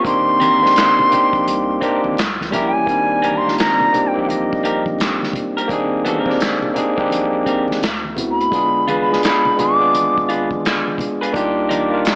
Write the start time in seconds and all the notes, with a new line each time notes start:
0.03 G#1 A#3 C4 D4 D#4 C6, kick, closed hi-hat, muted conga
0.08 G4
0.40 C4 G4 A#4, closed hi-hat, muted conga, high conga
0.62 A#3 C4 D4 D#4 G4, snare
0.76 snare, clap, closed hi-hat, muted conga
0.99 low conga
1.10 A#1 A#3 C4 D4 D#4, closed hi-hat, low conga
1.14 G4
1.33 A#1, kick
1.47 C2, closed hi-hat, high conga
1.81 G#1 A#3 C4 D4 D#4 G4 A#4, kick, closed hi-hat
1.85 G4
2.04 G#1, high conga
2.17 C2, snare, clap, closed hi-hat, muted conga
2.41 C#2, snare, high conga
2.51 A#1 G3 A#3 C#4 E4 A#4, closed hi-hat, muted conga, low conga
2.55 G4
2.66 G#5
2.77 A1
2.86 G#1 A#3 C4 D4 D#4, kick, closed hi-hat
2.90 G3
3.22 C4 G4 A#4, closed hi-hat, high conga
3.37 C6
3.44 A#3 C4 D4 D#4 F4, snare
3.58 A#5, snare, clap, closed hi-hat
3.80 low conga
3.92 A#1 A#3 C4 D4 D#4 G4, closed hi-hat, muted conga, low conga
4.07 G5
4.14 A#1 A#3 C4 D#4
4.18 G4
4.29 D#5, closed hi-hat, muted conga, high conga
4.53 kick
4.63 C4 G4 A#4, closed hi-hat, muted conga
4.86 kick, high conga
4.99 snare, clap, closed hi-hat, muted conga
5.22 snare, high conga
5.33 kick, closed hi-hat, low conga
5.57 C4 G4 A#4, closed hi-hat
5.68 G#1 A#3 C4 D4 D#4, kick, closed hi-hat, muted conga
5.72 G#4
6.05 B3 F#4 A4, closed hi-hat, muted conga, high conga
6.19 C4 G4 A#4
6.26 A#3 C4 D4 D#4, kick
6.30 G4, snare
6.40 snare, clap, closed hi-hat
6.62 low conga
6.74 A#1 A#3 C4 D4 D#4, closed hi-hat, muted conga, low conga
6.78 G#4
6.96 A#1 A#3 C4 D4 D#4, kick
7.00 G4
7.11 closed hi-hat, muted conga, high conga
7.46 C4 G4 A#4, kick, closed hi-hat
7.68 snare, high conga
7.81 D2, snare, clap, closed hi-hat, muted conga
8.05 high conga
8.15 A3 B3 C4 E4, closed hi-hat, muted conga, low conga
8.19 F#4
8.31 B5
8.41 closed hi-hat
8.51 G1 G#3 B3 D4 F4, kick, closed hi-hat, muted conga
8.55 G#4
8.88 F4 G#4 B4, closed hi-hat, high conga
9.01 B5
9.09 G#3 B3 D4 F4
9.13 G#4, snare
9.23 B5, snare, clap, closed hi-hat, muted conga
9.45 G#1, low conga
9.56 G#1 G#3 B3 D4 F4 D6, closed hi-hat, low conga
9.61 G#4
9.79 G#3 B3 D4 F4 G#4
9.94 closed hi-hat, muted conga, high conga
10.18 kick
10.29 F4 G#4 B4, closed hi-hat
10.51 kick, high conga
10.65 snare, clap, closed hi-hat
10.88 high conga
10.98 kick, closed hi-hat, low conga
11.21 F4 G#4 B4, closed hi-hat
11.32 C2 A#3 D4 D#4 F4, kick, closed hi-hat, muted conga
11.36 G4
11.69 D#4 A#4 D5, closed hi-hat, high conga
11.90 A#3 D4 D#4 F4 A#4
12.05 snare, clap, closed hi-hat